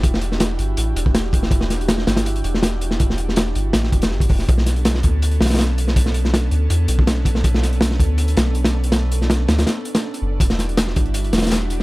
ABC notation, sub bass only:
X:1
M:4/4
L:1/8
Q:1/4=162
K:Em
V:1 name="Sub bass" clef=bass
E,,,3 G,,, A,,, E,,,3 | E,,,3 G,,,2 E,,,3- | E,,,3 G,,, A,,, E,,, G,,, E,,, | B,,,3 D,,2 B,,,3- |
B,,,3 D,, E,, B,,,3 | B,,,3 D,,2 B,,,3- | B,,,3 D,, z3 F,,, | E,,,3 G,,,2 E,,,3 |]